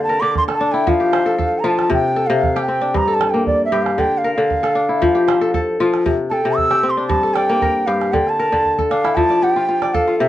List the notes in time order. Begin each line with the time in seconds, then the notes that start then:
Already playing: D3 A#3 C4 D4 G4 D5
0.03 A5
0.09 A#4, calabash click
0.21 D3 D6
0.35 C6, calabash thump, calabash click
0.48 A4, calabash click
0.54 A5
0.61 D4
0.72 E4 G5
0.87 F3 F5, calabash thump
1.00 G4
1.13 C5, calabash click
1.26 A4
1.38 A4, calabash thump
1.59 A#5
1.64 F3 F4 A5
1.79 calabash click
1.90 C3 G5, calabash thump
2.16 A4
2.27 C3 F5
2.43 calabash thump
2.56 G4, calabash click
2.62 G5
2.68 C4
2.82 D4
2.94 G2 A#5, calabash thump
3.08 A4
3.14 A5
3.21 calabash click
3.30 A#3 G5
3.47 D5, calabash thump
3.65 E5
3.72 G2 G4
3.83 F5, calabash click
3.98 D3 G5, calabash thump
4.18 F5
4.25 A#4
4.34 D3 F5
4.51 calabash thump
4.63 A4, calabash click
4.75 D4
4.89 E4
5.02 F3, calabash thump
5.15 G4
5.28 C5, calabash click
5.41 A4
5.54 A4, calabash thump
5.80 F3 F4
5.94 calabash click
6.06 C3, calabash thump
6.30 A4 G5 A5
6.45 C3
6.56 E6, calabash thump
6.71 G4, calabash click
6.83 C4
6.90 C6
6.97 D4
7.07 G2 A5, calabash thump
7.23 A4, calabash click
7.34 D5 G5, calabash click
7.49 A#3
7.62 A#4, calabash thump
7.86 G2 G4 F5
8.01 calabash click
8.12 D3 G5, calabash thump
8.27 A5, calabash click
8.39 A#4, calabash click
8.52 D3, calabash thump
8.65 calabash thump
8.78 A4, calabash thump
8.90 D4 F5, calabash click
9.04 E4, calabash click
9.15 F3 A5, calabash thump
9.30 D5, calabash click
9.43 G4 F#5
9.54 F4 G5
9.69 F4
9.82 D5, calabash click
9.94 A4 F5, calabash thump
10.08 F4, calabash click
10.19 C3 E5